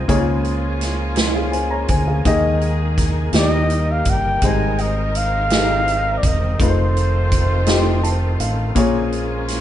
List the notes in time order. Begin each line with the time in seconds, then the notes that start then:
Already playing: G3 G#3 D#4 F4 G#4 A#4
0.08 C#2 C#3 F3 A#3 C#4 D#4 F4 G#4 C#5, kick, closed hi-hat
0.15 F4
0.44 closed hi-hat
0.81 snare, closed hi-hat
1.16 snare, closed hi-hat
1.35 G#4 F5
1.52 C5 G#5, closed hi-hat
1.71 C#5 A#5
1.88 D2 C5 G#5, kick, closed hi-hat
2.07 G#4 F5
2.25 D#2 D#3 G#3 A#3 D#4 G#4 D#5, kick, closed hi-hat
2.61 closed hi-hat
2.98 kick, snare, closed hi-hat
3.32 D#2 D#3 G3 A#3 D#4 G4 D#5, snare, closed hi-hat
3.37 A#4 D#5
3.70 closed hi-hat
3.92 F5
4.05 G1, kick, closed hi-hat
4.10 G5
4.40 G#1 G#2 D#3 G3 G#3 C4 D#4, kick, closed hi-hat
4.45 C5 G#5
4.78 D#5, closed hi-hat
5.15 F5, closed hi-hat
5.50 G#3 D#4 G4 A4, snare, closed hi-hat
5.60 A#4
5.88 closed hi-hat
6.18 D5
6.23 E1 D#5, kick, closed hi-hat
6.59 F1 A3 D#4 F4 A#4 C5, kick, closed hi-hat
6.68 C5
6.97 closed hi-hat
7.32 kick, closed hi-hat
7.66 A3 D#4 F4 G4, snare, closed hi-hat
8.03 A5, closed hi-hat
8.40 A1 F5, closed hi-hat
8.75 A#1 A#2 F3 G#3 A#3 C#4 F4 G#4 C#5, kick, closed hi-hat
9.12 closed hi-hat
9.48 snare, closed hi-hat